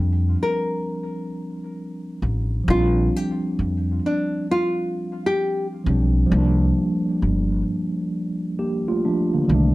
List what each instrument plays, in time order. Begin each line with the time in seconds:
Already playing: upright bass F2, tine electric piano F3 G3 C4 D4, nylon-string guitar G4
0.43 nylon-string guitar A#4
2.22 upright bass A1
2.64 tine electric piano F3 G3
2.68 upright bass A#1, tine electric piano C4, nylon-string guitar F4
2.75 tine electric piano D4
3.16 nylon-string guitar G4
3.59 upright bass F2
4.06 nylon-string guitar D4
4.51 nylon-string guitar F4
5.26 nylon-string guitar G4
5.84 upright bass B1, tine electric piano F3 G3 C4
5.89 tine electric piano D4
6.27 tine electric piano F3 G3
6.32 upright bass C2, tine electric piano A#3
6.37 tine electric piano D4
7.22 upright bass G1
8.59 tine electric piano A#3 G4
8.88 tine electric piano A3 F4
9.05 tine electric piano F3 D4
9.33 tine electric piano D3 A#3
9.45 tine electric piano D#3 G3
9.49 upright bass C2, tine electric piano A3
9.55 tine electric piano D4